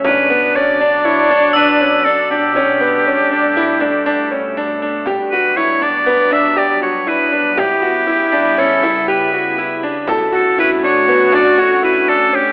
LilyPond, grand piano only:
\new Staff \with { instrumentName = "Grand piano" } { \time 5/4 \key g \lydian \tempo 4 = 120 cis'8 b8 cis'8 d'8 e'8 d'8 d'8 cis'8 d'8 d'8 | cis'8 b8 cis'8 d'8 e'8 d'8 d'8 cis'8 d'8 d'8 | g'8 fis'8 e'8 d'8 b8 d'8 g'8 fis'8 e'8 d'8 | g'8 fis'8 e'8 d'8 cis'8 e'8 g'8 fis'8 e'8 d'8 |
a'8 fis'8 e'8 d'8 b8 d'8 fis'8 e'8 d'8 cis'8 | }